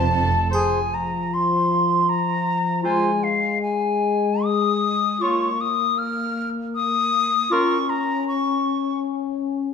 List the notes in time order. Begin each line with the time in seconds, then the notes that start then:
Already playing: F1 F2 C5 A5
0.11 A4
0.51 F3 G#4 C5 G#5, triangle
0.93 A#5
1.33 C6
2.08 A#5
2.83 G#3 F4 C5 G#5
3.23 F5
3.62 G#5
4.44 D#6
5.21 A#3 F4 C#5 C#6
5.60 D#6
5.98 F6
6.75 D#6
7.50 C#4 F4 A#4 C#6
7.89 A#5
8.28 C#6